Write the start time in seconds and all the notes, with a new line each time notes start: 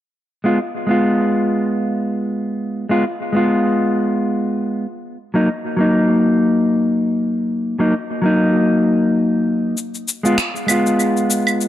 0.44 G#3 B3 F4
0.87 G#3 B3
0.91 F4
2.89 G#3 B3 F4
3.33 G#3 B3 F4
5.34 F#3 A#3 D#4
5.77 F#3 A#3
5.81 D#4
7.79 F#3 A#3 D#4
8.22 F#3 A#3
8.26 D#4
9.77 cabasa
9.95 cabasa
10.08 cabasa
10.23 G#3 B3 F4, cabasa
10.38 finger snap, cabasa
10.56 cabasa
10.67 G#3 B3, cabasa, claves
10.71 F4
10.87 cabasa
11.00 cabasa
11.17 cabasa
11.31 cabasa
11.47 cabasa, claves
11.61 cabasa